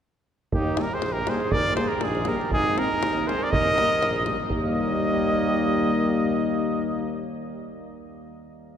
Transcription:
0.52 D#2 D#4 G4, davul low
0.76 G3 A#3, davul high
0.80 G4 A#4
0.92 G#4 C5, davul high
1.01 A#1, davul high
1.12 G4 A#4
1.27 G3 A#3 G#4 C5, davul high
1.40 davul high
1.51 D#2 A#4 D5, davul low
1.75 G3 A#3 G#4 C5, davul high
1.88 A#4, davul high
1.95 G4
2.01 A#1 G#4, davul high
2.06 D#4
2.15 davul high
2.25 G3 A#3 G4 A#4, davul high
2.41 davul high
2.51 G#1 D#4 G#4, davul low
2.76 G#3 C4 D#4 A#4, davul high
2.92 davul high
3.00 D#2, davul high
3.18 davul high
3.26 G#3 C4 G#4 C5, davul high
3.39 A#4, davul high
3.43 D5
3.49 D#2 A#4 D#5, davul low
3.67 davul high
3.77 G3 A#3, davul high
4.00 A#1, davul high
4.16 davul high
4.25 G3 A#3, davul high
4.49 D#2 G3 A#3 D#5, davul low

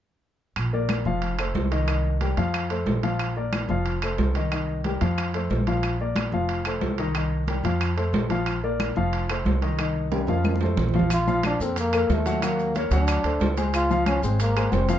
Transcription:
0.56 A#1, high conga, high timbale, claves
0.73 A#3 A#4 D5, high conga
0.89 high conga, high timbale, low timbale, claves
1.05 F1 F3 F4 F5
1.22 high conga, high timbale
1.39 A3 A4 C5, high conga, high timbale, claves
1.55 C2, high conga, low timbale
1.72 D#3 D#4 D#5, high conga, high timbale
1.88 D#3 D#4 D#5, high conga, high timbale, claves
2.05 high conga
2.21 G3 G4 A#4, high conga, high timbale, low timbale
2.37 F2 F3 F4 F5, high conga, high timbale
2.54 high conga, high timbale, claves
2.70 A3 A4 C5, high conga, high timbale
2.86 A#1, high conga, low timbale
3.03 F3 F4 F5, high conga, high timbale
3.19 high conga, high timbale, claves
3.37 A#3 A#4 D5, high conga
3.53 high conga, high timbale, low timbale, claves
3.69 F1 F3 F4 F5
3.86 high conga, high timbale
4.02 A3 A4 C5, high conga, high timbale, claves
4.18 C2, high conga, low timbale
4.35 D#3 D#4 D#5, high conga, high timbale
4.52 D#3 D#4 D#5, high conga, high timbale, claves
4.69 high conga
4.84 G3 G4 A#4, high conga, high timbale, low timbale
5.01 F2 F3 F4 F5, high timbale
5.18 high conga, high timbale, claves
5.34 A3 A4 C5, high conga, high timbale
5.50 A#1, high conga, low timbale
5.67 F3 F4 F5, high conga, high timbale
5.83 high timbale, claves
6.00 A#3 A#4 D5, high conga
6.16 high conga, high timbale, low timbale, claves
6.32 F1 F3 F4 F5
6.49 high conga, high timbale
6.65 A3 A4 C5, high conga, high timbale, claves
6.81 C2, high conga, low timbale
6.98 D#3 D#4 D#5, high conga, high timbale
7.15 D#3 D#4 D#5, high conga, high timbale, claves
7.31 high conga
7.48 G3 G4 A#4, high conga, high timbale, low timbale
7.64 F2 F3 F4 F5, high conga, high timbale
7.81 high conga, high timbale, claves
7.97 A3 A4 C5, high conga, high timbale
8.13 A#1, high conga, low timbale
8.30 F3 F4 F5, high conga, high timbale
8.46 high timbale, claves
8.63 A#3 A#4 D5, high conga
8.80 high conga, high timbale, low timbale, claves
8.96 F1 F3 F4 F5
9.13 high conga, high timbale
9.29 A3 A4 C5, high conga, high timbale, claves
9.45 C2, high conga, low timbale
9.62 D#3 D#4 D#5, high conga, high timbale
9.79 D#3 D#4 D#5, high conga, high timbale, claves
9.95 high conga
10.12 G3 G4 A#4, high conga, high timbale
10.27 F2 F3 F4 F5, high conga, high timbale
10.44 high conga, high timbale, claves
10.56 high conga
10.61 A3 A4 C5, low timbale
10.66 high conga
10.77 A#1, low conga, low timbale
10.89 low conga
10.94 F3 F4 F5, low timbale
10.99 low conga
11.10 F4, high conga, high timbale, claves, maracas
11.27 F3 F4 F5, high conga, maracas
11.43 D4, high conga, high timbale, low timbale, claves, maracas
11.60 F2 A#3 C4 A4 A#4, maracas
11.76 A#3, high conga, high timbale, maracas
11.93 A#3 A4 A#4, high conga, high timbale, claves, maracas
12.10 D#2 A3, high conga, low timbale, maracas
12.26 F#3 F#4 F#5, high conga, high timbale, maracas
12.42 F#3 A#3 F#4 F#5, high conga, high timbale, claves, maracas
12.59 high conga, maracas
12.75 A#3 A#4 C#5, high conga, high timbale, low timbale, maracas
12.91 D2 F#3 D4 F#4 F#5, high conga, high timbale, maracas
13.08 high conga, high timbale, claves, maracas
13.24 D2 A3 A4 C5, high conga, high timbale, maracas
13.40 C#2, high conga, low timbale, maracas
13.57 G#3 G#4 C5, high conga, high timbale, maracas
13.74 F4, high conga, high timbale, claves, maracas
13.90 F3 F4 F5, high conga, maracas
14.06 C#4, high conga, high timbale, low timbale, claves, maracas
14.22 G#1 G#3 C4 G#4 C5, maracas
14.40 A#3, high conga, high timbale, maracas
14.56 G#3 G#4 C5, high conga, high timbale, claves, maracas
14.72 F1 C4, high conga, low timbale, maracas
14.89 F3 F4 F5, high conga, high timbale, maracas

